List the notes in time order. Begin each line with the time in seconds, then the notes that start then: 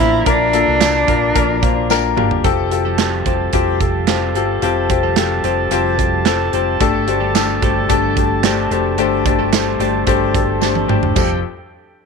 Already playing: F3 E4 A4 A#4 D5 A#5
0.00 A1 A#2 F3 A#3 D4 F4 A#4 C5
0.26 A#1 A#3 D4 F4 A#4, kick, closed hi-hat
0.53 A#3 D4 F4 A4, closed hi-hat
0.67 C2 A#3 D4 F4 A#4
0.80 A#3 D4 F4 A4, snare, clap, closed hi-hat, tambourine
1.07 A#1 A#3 D4 F4 A#4, kick, closed hi-hat
1.34 A#1 A#2 F3 A#3 D4 F4 A#4, kick, closed hi-hat
1.61 A#3 D4 F4 A#4 C5, kick, closed hi-hat
1.90 A#3 D4 F4 A#4 G5, snare, tambourine
2.16 G1 A#3 D4 F4 G4 A#4 F5, mid tom
2.31 floor tom
2.44 F1 C3 G3 C4 F4 G4 A4 F5 A5, kick, closed hi-hat
2.71 C4 F4 G4 A4, closed hi-hat
2.85 F3 G3 C4 G4 A4
2.98 C4 F4 G4 A4, snare, clap, closed hi-hat
3.25 F1 F3 G3 C4 F4 G4 A4 C5, kick, closed hi-hat
3.53 F1 F3 G3 C4 F4 G4 A4 C5, kick, closed hi-hat
3.80 C4 F4 G4 A4, kick, closed hi-hat
4.07 G3 C4 F4 G4 A4 C5, snare, clap, closed hi-hat
4.34 G1 G3 C4 F4 G4 A4, closed hi-hat
4.61 F1 C3 G3 C4 F4 G4 A4 C5, closed hi-hat
4.90 C4 F4 G4 C5, kick, closed hi-hat
5.03 F3 G3 C4 G4 A4
5.16 C4 F4 G4 A4, snare, clap, closed hi-hat
5.44 F1 F3 G3 C4 F4 G4 A4 C5, closed hi-hat
5.71 F1 F3 G3 C4 F4 G4 A4 C5, closed hi-hat
5.98 C4 F4 G4 C5, kick, closed hi-hat
6.25 G3 C4 F4 G4 A4, snare, clap, closed hi-hat
6.53 F1 G3 C4 F4 G4 A4 C5, closed hi-hat
6.80 G1 G2 D3 A3 D4 G4 A4 D5, kick, closed hi-hat
7.07 A3 D4 G4 C5, closed hi-hat
7.20 G3 A3 D4 G4 A4
7.34 A3 D4 G4 A4, snare, clap, closed hi-hat, tambourine
7.62 G1 G3 A3 D4 G4 A4 C5, kick, closed hi-hat
7.89 G1 G3 A3 D4 G4 A4, kick, closed hi-hat
8.17 A3 D4 G4 A4, kick, closed hi-hat
8.44 A3 D4 G4 A4 C5, snare, clap, closed hi-hat, tambourine
8.71 F1 A3 D4 G4 A4 C5, closed hi-hat
8.98 G1 G2 D3 A3 D4 G4 A4 C5, closed hi-hat
9.26 A3 D4 G4 C5, kick, closed hi-hat
9.39 G3 A3 D4 G4 A4
9.53 A3 D4 G4 C5, snare, clap, closed hi-hat, tambourine
9.79 G1 G3 A3 D4 G4 A4 C5, closed hi-hat
10.07 G1 G3 A3 D4 G4 A4 C5, kick, closed hi-hat
10.34 A3 D4 G4 A4, kick, closed hi-hat
10.61 A3 D4 G4 A4 C5, snare, tambourine
10.75 high tom
10.88 G1 A3 D4 G4 A4 C5, mid tom
11.03 floor tom
11.15 F1 F2 F3 G3 C4 F4 G4 A4 G5, kick, crash, tambourine